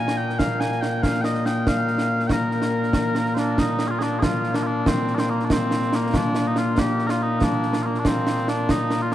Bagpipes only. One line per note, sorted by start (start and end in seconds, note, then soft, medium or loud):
0.00 9.15 A#2 medium
0.00 5.30 A#3 medium
0.00 0.17 G#5 loud
0.17 0.39 G5 medium
0.39 0.60 F5 loud
0.60 0.81 G#5 medium
0.81 1.03 G5 loud
1.03 1.21 F5 loud
1.21 1.46 D#5 loud
1.21 1.25 G5 loud
1.46 1.68 G5 loud
1.68 2.27 F5 loud
2.27 2.32 G5 medium
2.32 3.35 A#4 medium
3.35 3.39 C5 medium
3.39 3.60 D4 medium
3.60 3.88 D#4 medium
3.88 3.99 F4 medium
3.88 3.91 G#4 medium
3.99 4.19 D4 medium
3.99 4.03 G#4 medium
4.19 4.55 F4 medium
4.19 4.23 G#4 medium
4.55 4.63 D4 medium
4.63 4.87 D4 loud
4.63 4.66 F4 loud
4.87 5.15 C4 loud
5.15 5.19 D4 medium
5.19 5.30 C4 medium
5.30 5.45 A#3 medium
5.45 5.52 D4 medium
5.52 5.95 C4 medium
5.95 6.16 A#3 medium
6.16 6.47 D4 loud
6.47 6.58 D#4 loud
6.58 6.79 F4 loud
6.79 7.07 G4 loud
7.07 7.22 F4 loud
7.07 7.11 A#4 loud
7.22 7.44 D#4 loud
7.44 7.82 D4 loud
7.82 7.99 A#3 medium
7.82 7.86 F4 medium
7.99 8.07 D4 medium
8.07 8.49 C4 medium
8.49 8.71 D4 loud
8.71 9.02 D#4 loud
9.02 9.12 F4 loud